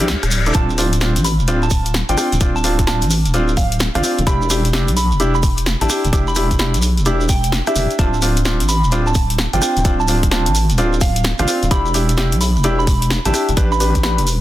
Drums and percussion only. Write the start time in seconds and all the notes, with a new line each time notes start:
0.00 shekere
0.08 snare, shekere
0.23 cross-stick, closed hi-hat, shekere
0.31 open hi-hat, shekere
0.46 closed hi-hat, shekere
0.54 kick, closed hi-hat, shekere
0.70 shekere
0.78 cross-stick, open hi-hat, shekere
0.93 closed hi-hat, shekere
1.01 snare, shekere
1.16 closed hi-hat, shekere
1.24 open hi-hat, shekere
1.39 shekere
1.48 closed hi-hat, shekere
1.62 shekere
1.70 kick, open hi-hat, shekere
1.86 closed hi-hat, shekere
1.94 snare, shekere
2.09 closed hi-hat, shekere
2.17 cross-stick, open hi-hat, shekere
2.32 closed hi-hat, shekere
2.41 kick, closed hi-hat, shekere
2.56 shekere
2.64 cross-stick, open hi-hat, shekere
2.79 kick, closed hi-hat, shekere
2.87 snare, shekere
3.02 closed hi-hat, shekere
3.10 open hi-hat, shekere
3.25 closed hi-hat, shekere
3.34 closed hi-hat, shekere
3.48 shekere
3.57 kick, open hi-hat, shekere
3.72 closed hi-hat, shekere
3.80 snare, shekere
3.95 cross-stick, closed hi-hat, shekere
4.04 open hi-hat, shekere
4.18 closed hi-hat, shekere
4.27 kick, closed hi-hat, shekere
4.42 shekere
4.50 cross-stick, open hi-hat, shekere
4.65 closed hi-hat, shekere
4.73 snare, shekere
4.88 closed hi-hat, shekere
4.97 open hi-hat, shekere
5.11 shekere
5.20 closed hi-hat, shekere
5.35 shekere
5.43 kick, open hi-hat, shekere
5.57 closed hi-hat, shekere
5.66 snare, shekere
5.81 closed hi-hat, shekere
5.89 cross-stick, open hi-hat, shekere
6.04 closed hi-hat, shekere
6.13 kick, closed hi-hat, shekere
6.28 shekere
6.35 cross-stick, open hi-hat, shekere
6.51 kick, closed hi-hat, shekere
6.59 snare, shekere
6.74 closed hi-hat, shekere
6.82 open hi-hat, shekere
6.97 closed hi-hat, shekere
7.05 closed hi-hat, shekere
7.21 shekere
7.29 kick, open hi-hat, shekere
7.44 closed hi-hat, shekere
7.52 snare, shekere
7.67 cross-stick, closed hi-hat, shekere
7.76 open hi-hat, shekere
7.91 closed hi-hat, shekere
7.99 kick, closed hi-hat, shekere
8.14 shekere
8.22 cross-stick, open hi-hat, shekere
8.36 closed hi-hat, shekere
8.45 snare, shekere
8.60 closed hi-hat, shekere
8.69 open hi-hat, shekere
8.84 shekere
8.92 closed hi-hat, shekere
9.07 shekere
9.15 kick, open hi-hat, shekere
9.30 closed hi-hat, shekere
9.38 snare, shekere
9.53 closed hi-hat, shekere
9.62 cross-stick, open hi-hat, shekere
9.77 closed hi-hat, shekere
9.85 kick, closed hi-hat, shekere
10.00 shekere
10.08 cross-stick, open hi-hat, shekere
10.23 kick, closed hi-hat, shekere
10.31 snare, shekere
10.46 closed hi-hat, shekere
10.55 open hi-hat, shekere
10.70 closed hi-hat, shekere
10.78 closed hi-hat, shekere
10.93 shekere
11.01 kick, open hi-hat, shekere
11.16 closed hi-hat, shekere
11.24 snare, shekere
11.38 cross-stick, closed hi-hat, shekere
11.48 open hi-hat, shekere
11.63 closed hi-hat, shekere
11.71 kick, closed hi-hat, shekere
11.86 shekere
11.94 cross-stick, open hi-hat, shekere
12.09 closed hi-hat, shekere
12.17 snare, shekere
12.31 closed hi-hat, shekere
12.41 open hi-hat, shekere
12.56 shekere
12.64 closed hi-hat, shekere
12.79 shekere
12.87 kick, open hi-hat, shekere
13.02 closed hi-hat, shekere
13.10 snare, shekere
13.25 closed hi-hat, shekere
13.34 cross-stick, open hi-hat, shekere
13.49 closed hi-hat, shekere
13.57 kick, closed hi-hat, shekere
13.72 shekere
13.80 cross-stick, open hi-hat, shekere
13.95 kick, closed hi-hat, shekere
14.03 snare, shekere
14.18 closed hi-hat, shekere
14.27 open hi-hat, shekere